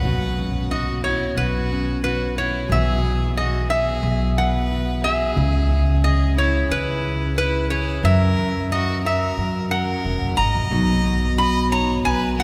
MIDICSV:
0, 0, Header, 1, 5, 480
1, 0, Start_track
1, 0, Key_signature, 5, "major"
1, 0, Tempo, 667408
1, 23, Time_signature, 4, 2, 24, 8
1, 8941, End_track
2, 0, Start_track
2, 0, Title_t, "Resonator guitar played with a steel bar"
2, 0, Program_c, 0, 25
2, 0, Note_on_c, 0, 78, 81
2, 512, Note_on_c, 0, 75, 78
2, 533, Note_off_c, 0, 78, 0
2, 744, Note_off_c, 0, 75, 0
2, 747, Note_on_c, 0, 73, 79
2, 968, Note_off_c, 0, 73, 0
2, 988, Note_on_c, 0, 71, 85
2, 1457, Note_off_c, 0, 71, 0
2, 1466, Note_on_c, 0, 71, 82
2, 1709, Note_off_c, 0, 71, 0
2, 1712, Note_on_c, 0, 73, 73
2, 1953, Note_off_c, 0, 73, 0
2, 1956, Note_on_c, 0, 76, 88
2, 2423, Note_off_c, 0, 76, 0
2, 2426, Note_on_c, 0, 75, 81
2, 2658, Note_off_c, 0, 75, 0
2, 2661, Note_on_c, 0, 76, 94
2, 3148, Note_off_c, 0, 76, 0
2, 3151, Note_on_c, 0, 78, 86
2, 3622, Note_off_c, 0, 78, 0
2, 3625, Note_on_c, 0, 76, 86
2, 4341, Note_off_c, 0, 76, 0
2, 4344, Note_on_c, 0, 75, 83
2, 4588, Note_off_c, 0, 75, 0
2, 4591, Note_on_c, 0, 73, 86
2, 4829, Note_on_c, 0, 71, 92
2, 4833, Note_off_c, 0, 73, 0
2, 5298, Note_off_c, 0, 71, 0
2, 5307, Note_on_c, 0, 71, 94
2, 5537, Note_off_c, 0, 71, 0
2, 5540, Note_on_c, 0, 73, 82
2, 5787, Note_off_c, 0, 73, 0
2, 5787, Note_on_c, 0, 76, 91
2, 6268, Note_off_c, 0, 76, 0
2, 6271, Note_on_c, 0, 75, 89
2, 6513, Note_off_c, 0, 75, 0
2, 6518, Note_on_c, 0, 76, 89
2, 6981, Note_off_c, 0, 76, 0
2, 6984, Note_on_c, 0, 78, 95
2, 7458, Note_on_c, 0, 82, 97
2, 7477, Note_off_c, 0, 78, 0
2, 8183, Note_off_c, 0, 82, 0
2, 8186, Note_on_c, 0, 83, 95
2, 8427, Note_off_c, 0, 83, 0
2, 8430, Note_on_c, 0, 82, 99
2, 8664, Note_off_c, 0, 82, 0
2, 8667, Note_on_c, 0, 80, 109
2, 8912, Note_off_c, 0, 80, 0
2, 8916, Note_on_c, 0, 78, 93
2, 8941, Note_off_c, 0, 78, 0
2, 8941, End_track
3, 0, Start_track
3, 0, Title_t, "Fiddle"
3, 0, Program_c, 1, 110
3, 0, Note_on_c, 1, 71, 83
3, 482, Note_off_c, 1, 71, 0
3, 508, Note_on_c, 1, 66, 68
3, 729, Note_off_c, 1, 66, 0
3, 743, Note_on_c, 1, 64, 69
3, 966, Note_off_c, 1, 64, 0
3, 986, Note_on_c, 1, 66, 69
3, 1435, Note_off_c, 1, 66, 0
3, 1467, Note_on_c, 1, 66, 66
3, 1688, Note_off_c, 1, 66, 0
3, 1709, Note_on_c, 1, 64, 67
3, 1929, Note_off_c, 1, 64, 0
3, 1939, Note_on_c, 1, 68, 83
3, 2391, Note_off_c, 1, 68, 0
3, 2427, Note_on_c, 1, 66, 72
3, 2647, Note_off_c, 1, 66, 0
3, 2667, Note_on_c, 1, 68, 75
3, 3115, Note_off_c, 1, 68, 0
3, 3150, Note_on_c, 1, 71, 82
3, 3596, Note_off_c, 1, 71, 0
3, 3619, Note_on_c, 1, 68, 78
3, 4311, Note_off_c, 1, 68, 0
3, 4341, Note_on_c, 1, 68, 75
3, 4564, Note_off_c, 1, 68, 0
3, 4577, Note_on_c, 1, 64, 78
3, 4802, Note_off_c, 1, 64, 0
3, 4818, Note_on_c, 1, 64, 82
3, 5270, Note_off_c, 1, 64, 0
3, 5301, Note_on_c, 1, 64, 76
3, 5524, Note_off_c, 1, 64, 0
3, 5545, Note_on_c, 1, 64, 78
3, 5766, Note_off_c, 1, 64, 0
3, 5786, Note_on_c, 1, 70, 88
3, 6234, Note_off_c, 1, 70, 0
3, 6270, Note_on_c, 1, 66, 81
3, 6489, Note_off_c, 1, 66, 0
3, 6499, Note_on_c, 1, 70, 83
3, 6951, Note_off_c, 1, 70, 0
3, 6983, Note_on_c, 1, 70, 81
3, 7434, Note_off_c, 1, 70, 0
3, 7459, Note_on_c, 1, 75, 91
3, 8152, Note_off_c, 1, 75, 0
3, 8189, Note_on_c, 1, 75, 86
3, 8409, Note_off_c, 1, 75, 0
3, 8420, Note_on_c, 1, 73, 83
3, 8645, Note_off_c, 1, 73, 0
3, 8662, Note_on_c, 1, 71, 92
3, 8886, Note_off_c, 1, 71, 0
3, 8893, Note_on_c, 1, 70, 84
3, 8941, Note_off_c, 1, 70, 0
3, 8941, End_track
4, 0, Start_track
4, 0, Title_t, "Steel-string acoustic guitar"
4, 0, Program_c, 2, 25
4, 0, Note_on_c, 2, 61, 60
4, 32, Note_on_c, 2, 47, 72
4, 35, Note_on_c, 2, 66, 66
4, 268, Note_off_c, 2, 61, 0
4, 276, Note_on_c, 2, 61, 58
4, 516, Note_off_c, 2, 66, 0
4, 519, Note_on_c, 2, 66, 64
4, 756, Note_off_c, 2, 66, 0
4, 759, Note_on_c, 2, 66, 60
4, 996, Note_off_c, 2, 66, 0
4, 999, Note_on_c, 2, 66, 57
4, 1228, Note_off_c, 2, 61, 0
4, 1237, Note_on_c, 2, 61, 60
4, 1464, Note_off_c, 2, 66, 0
4, 1473, Note_on_c, 2, 66, 61
4, 1707, Note_off_c, 2, 66, 0
4, 1714, Note_on_c, 2, 66, 70
4, 1920, Note_off_c, 2, 61, 0
4, 1946, Note_off_c, 2, 47, 0
4, 1948, Note_off_c, 2, 66, 0
4, 1954, Note_on_c, 2, 47, 73
4, 1961, Note_on_c, 2, 52, 62
4, 1965, Note_on_c, 2, 59, 65
4, 1971, Note_on_c, 2, 66, 57
4, 1976, Note_on_c, 2, 68, 68
4, 2181, Note_off_c, 2, 59, 0
4, 2190, Note_on_c, 2, 59, 58
4, 2426, Note_off_c, 2, 68, 0
4, 2429, Note_on_c, 2, 68, 66
4, 2668, Note_off_c, 2, 66, 0
4, 2676, Note_on_c, 2, 66, 58
4, 2905, Note_off_c, 2, 68, 0
4, 2908, Note_on_c, 2, 68, 60
4, 3145, Note_off_c, 2, 59, 0
4, 3154, Note_on_c, 2, 59, 60
4, 3385, Note_off_c, 2, 66, 0
4, 3394, Note_on_c, 2, 66, 58
4, 3617, Note_off_c, 2, 68, 0
4, 3625, Note_on_c, 2, 68, 69
4, 3834, Note_off_c, 2, 68, 0
4, 3838, Note_off_c, 2, 47, 0
4, 3838, Note_off_c, 2, 59, 0
4, 3838, Note_off_c, 2, 66, 0
4, 3850, Note_on_c, 2, 49, 80
4, 3856, Note_on_c, 2, 68, 66
4, 4104, Note_on_c, 2, 61, 61
4, 4338, Note_off_c, 2, 68, 0
4, 4353, Note_on_c, 2, 68, 62
4, 4581, Note_on_c, 2, 64, 59
4, 4817, Note_off_c, 2, 68, 0
4, 4826, Note_on_c, 2, 68, 61
4, 5058, Note_off_c, 2, 61, 0
4, 5067, Note_on_c, 2, 61, 59
4, 5295, Note_off_c, 2, 64, 0
4, 5304, Note_on_c, 2, 64, 55
4, 5537, Note_off_c, 2, 68, 0
4, 5546, Note_on_c, 2, 68, 65
4, 5746, Note_off_c, 2, 49, 0
4, 5753, Note_off_c, 2, 64, 0
4, 5754, Note_off_c, 2, 68, 0
4, 5755, Note_off_c, 2, 61, 0
4, 5775, Note_on_c, 2, 42, 69
4, 5781, Note_on_c, 2, 70, 68
4, 5790, Note_off_c, 2, 52, 0
4, 6033, Note_on_c, 2, 61, 53
4, 6255, Note_off_c, 2, 70, 0
4, 6264, Note_on_c, 2, 70, 69
4, 6506, Note_on_c, 2, 66, 63
4, 6743, Note_off_c, 2, 70, 0
4, 6753, Note_on_c, 2, 70, 60
4, 6979, Note_off_c, 2, 61, 0
4, 6988, Note_on_c, 2, 61, 58
4, 7217, Note_off_c, 2, 66, 0
4, 7226, Note_on_c, 2, 66, 57
4, 7451, Note_off_c, 2, 70, 0
4, 7459, Note_on_c, 2, 70, 66
4, 7672, Note_off_c, 2, 70, 0
4, 7675, Note_off_c, 2, 66, 0
4, 7676, Note_off_c, 2, 61, 0
4, 7699, Note_off_c, 2, 42, 0
4, 7699, Note_on_c, 2, 47, 72
4, 7702, Note_on_c, 2, 54, 65
4, 7711, Note_on_c, 2, 59, 64
4, 7714, Note_on_c, 2, 63, 60
4, 7718, Note_on_c, 2, 66, 70
4, 7938, Note_off_c, 2, 59, 0
4, 7941, Note_on_c, 2, 59, 58
4, 8183, Note_off_c, 2, 66, 0
4, 8192, Note_on_c, 2, 66, 64
4, 8425, Note_off_c, 2, 63, 0
4, 8428, Note_on_c, 2, 63, 53
4, 8654, Note_off_c, 2, 66, 0
4, 8662, Note_on_c, 2, 66, 65
4, 8902, Note_off_c, 2, 59, 0
4, 8905, Note_on_c, 2, 59, 58
4, 8941, Note_off_c, 2, 47, 0
4, 8941, Note_off_c, 2, 54, 0
4, 8941, Note_off_c, 2, 59, 0
4, 8941, Note_off_c, 2, 63, 0
4, 8941, Note_off_c, 2, 66, 0
4, 8941, End_track
5, 0, Start_track
5, 0, Title_t, "Upright bass"
5, 0, Program_c, 3, 32
5, 18, Note_on_c, 3, 35, 88
5, 951, Note_off_c, 3, 35, 0
5, 982, Note_on_c, 3, 35, 88
5, 1912, Note_off_c, 3, 35, 0
5, 1938, Note_on_c, 3, 35, 97
5, 2870, Note_off_c, 3, 35, 0
5, 2897, Note_on_c, 3, 35, 92
5, 3830, Note_off_c, 3, 35, 0
5, 3862, Note_on_c, 3, 37, 94
5, 4792, Note_off_c, 3, 37, 0
5, 4818, Note_on_c, 3, 37, 86
5, 5751, Note_off_c, 3, 37, 0
5, 5777, Note_on_c, 3, 42, 95
5, 6710, Note_off_c, 3, 42, 0
5, 6742, Note_on_c, 3, 42, 83
5, 7198, Note_off_c, 3, 42, 0
5, 7224, Note_on_c, 3, 28, 76
5, 7331, Note_off_c, 3, 28, 0
5, 7347, Note_on_c, 3, 30, 78
5, 7453, Note_off_c, 3, 30, 0
5, 7466, Note_on_c, 3, 32, 78
5, 7572, Note_off_c, 3, 32, 0
5, 7588, Note_on_c, 3, 34, 84
5, 7693, Note_off_c, 3, 34, 0
5, 7705, Note_on_c, 3, 35, 96
5, 8636, Note_off_c, 3, 35, 0
5, 8665, Note_on_c, 3, 35, 90
5, 8941, Note_off_c, 3, 35, 0
5, 8941, End_track
0, 0, End_of_file